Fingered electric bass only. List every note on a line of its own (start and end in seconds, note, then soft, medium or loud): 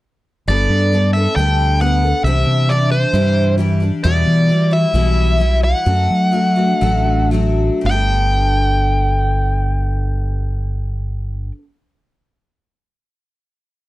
0.48 0.66 G1 medium
0.69 1.26 G2 medium
1.36 2.12 D2 medium
2.24 2.43 C2 medium
2.47 3.04 C3 medium
3.13 3.90 G2 medium
4.05 4.23 E2 medium
4.27 4.85 E3 medium
4.94 5.73 B1 medium
5.86 6.07 F#2 medium
6.10 6.72 F#3 medium
6.82 7.69 A1 medium
7.84 11.50 G1 medium